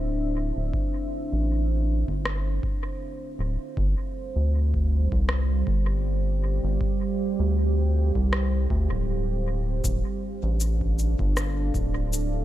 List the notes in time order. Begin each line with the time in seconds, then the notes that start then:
Already playing: D1 D4 G4 A4 C5 E5 F5
0.57 D1
0.74 kick
1.33 A1
2.08 G1, kick
2.25 cross-stick
2.63 kick
3.39 D1
3.77 G1 G3, kick
4.35 D2 G4
4.74 kick
5.12 C2, kick
5.29 cross-stick
5.67 G1, kick
6.64 G1
6.81 kick
7.40 D2
8.15 C2, kick
8.33 cross-stick
8.70 D2, kick
8.91 D1
9.84 D1 D4, kick, shaker
10.20 F5
10.36 C5
10.43 A1 A4
10.60 shaker
10.81 kick
10.99 shaker
11.19 G1, kick
11.37 cross-stick, shaker
11.58 E5
11.74 D1, kick, shaker
12.13 shaker